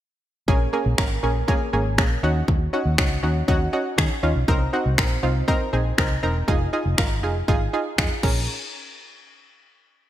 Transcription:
0.48 fingered electric bass A#1, synth pluck A#3 C#4 G#4, kick
0.73 synth pluck A#3 C#4 G#4
0.86 fingered electric bass A#1
0.98 synth pluck A#3 C#4 A#4, finger snap, kick
1.23 fingered electric bass A#1, synth pluck A#3 C#4 G#4
1.48 synth pluck A#3 C#4 G#4, kick
1.73 fingered electric bass G#1, synth pluck A#3 C#4 G#4
1.98 fingered electric bass A#1, synth pluck A#3 C#4 G#4, finger snap, kick
2.23 fingered electric bass D#2, synth pluck C#4 D#4 F#4
2.48 fingered electric bass D#2, kick
2.73 synth pluck C#4 D#4 F#4
2.86 fingered electric bass D#2
2.98 synth pluck C#4 D#4 F#4, finger snap, kick
3.23 fingered electric bass D#2, synth pluck C#4 D#4 F#4
3.48 fingered electric bass D#2, synth pluck C#4 D#4 F#4, kick
3.73 synth pluck C#4 D#4 F#4
3.98 fingered electric bass D#3, synth pluck C#4 D#4 G#4, finger snap, kick
4.23 fingered electric bass D#2, synth pluck C#4 D#4 F4
4.36 fingered electric bass B1
4.48 fingered electric bass C2, synth pluck C4 D#4 A#4, kick
4.73 synth pluck C4 D#4 F#4
4.86 fingered electric bass C2
4.98 synth pluck C4 D#4 A#4, finger snap, kick
5.23 fingered electric bass C2, synth pluck C4 D#4 F4
5.48 synth pluck C4 D#4 A#4, kick
5.73 fingered electric bass A#1, synth pluck C4 D#4 G#4
5.98 fingered electric bass C2, synth pluck C4 D#4 A#4, finger snap, kick
6.23 fingered electric bass E1, synth pluck C4 D#4 A#4
6.48 fingered electric bass F1, synth pluck D#4 F4 G#4, kick
6.73 synth pluck D#4 F4 G#4
6.86 fingered electric bass F1
6.98 fingered electric bass G#1, synth pluck D#4 F4 A#4, finger snap, kick
7.23 fingered electric bass F1, synth pluck D#4 F4 G#4
7.48 fingered electric bass G#1, synth pluck D#4 F4 G#4, kick
7.73 synth pluck D#4 F4 G#4
7.98 fingered electric bass F2, synth pluck D#4 F4 G#4, finger snap, kick
8.23 fingered electric bass A#1, synth pluck C#4 G#4 A#4, kick, crash

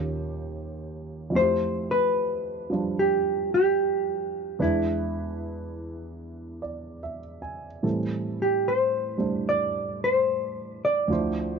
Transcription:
Already playing: grand piano D#2 D#3 C#4 F4 G4, hollow-body jazz guitar F4
1.30 grand piano F2 F3
1.35 grand piano A3 E4, hollow-body jazz guitar C5
1.41 grand piano G4
1.91 hollow-body jazz guitar B4
2.70 grand piano F3 G3 D4 F4
2.99 hollow-body jazz guitar G4
3.54 hollow-body jazz guitar G4
4.59 grand piano E2 E3 G#3 D4 B4, hollow-body jazz guitar E4
6.62 grand piano D5
7.03 grand piano E5
7.42 grand piano G#5
7.83 grand piano A2 E3 G3 C4 A4
8.42 hollow-body jazz guitar G4
8.68 hollow-body jazz guitar C5
9.18 grand piano G3 A3 D4 C5
9.49 hollow-body jazz guitar D5
10.04 hollow-body jazz guitar C5
10.85 hollow-body jazz guitar D5
11.08 grand piano D2 D3 F3 E4
11.12 grand piano C5

